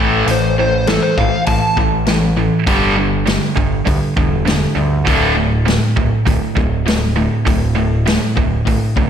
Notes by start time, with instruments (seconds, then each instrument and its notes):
Already playing: overdriven electric guitar A2
0.00 picked electric bass A1, overdriven electric guitar E3 A3
0.26 picked electric bass A1, overdriven electric guitar A2 E3, open hi-hat
0.31 electric slide guitar C5
0.58 overdriven electric guitar A2 E3, electric slide guitar C5
0.87 overdriven electric guitar A2 E3, electric slide guitar A4, snare, open hi-hat
1.02 electric slide guitar C5
1.17 picked electric bass A1, overdriven electric guitar A2 E3, electric slide guitar F5, kick
1.46 picked electric bass A1, overdriven electric guitar A2 E3, electric slide guitar A5, kick, open hi-hat
1.77 picked electric bass A1, overdriven electric guitar A2 E3, kick
2.06 overdriven electric guitar A2 E3, snare, open hi-hat
2.37 overdriven electric guitar A2 E3
2.66 picked electric bass G1, overdriven electric guitar G2 D3 G3, kick, open hi-hat
2.96 overdriven electric guitar G2 D3
3.26 overdriven electric guitar G2 D3, snare, open hi-hat
3.56 picked electric bass G1, overdriven electric guitar G2 D3, kick
3.86 picked electric bass D2, overdriven electric guitar G2 D3, kick, open hi-hat
4.17 picked electric bass E1, overdriven electric guitar G2 D3, kick
4.46 overdriven electric guitar G2 D3, snare, open hi-hat
4.76 picked electric bass D2, overdriven electric guitar G2 D3
5.06 picked electric bass D1, overdriven electric guitar D2 A2 D3, kick, open hi-hat
5.36 overdriven electric guitar D2 A2
5.66 overdriven electric guitar D2 A2, snare, open hi-hat
5.96 picked electric bass D1, overdriven electric guitar D2 A2, kick
6.26 picked electric bass D1, overdriven electric guitar D2 A2, kick, open hi-hat
6.56 picked electric bass D1, overdriven electric guitar D2 A2, kick
6.86 overdriven electric guitar D2 A2, snare, open hi-hat
7.16 overdriven electric guitar D2 A2
7.46 picked electric bass D1, overdriven electric guitar D2 A2, kick, open hi-hat
7.76 overdriven electric guitar D2 A2
8.06 overdriven electric guitar D2 A2, snare, open hi-hat
8.36 picked electric bass D1, overdriven electric guitar D2 A2, kick
8.65 picked electric bass A1, overdriven electric guitar D2 A2, kick, open hi-hat
8.96 picked electric bass C#2, overdriven electric guitar D2 A2, kick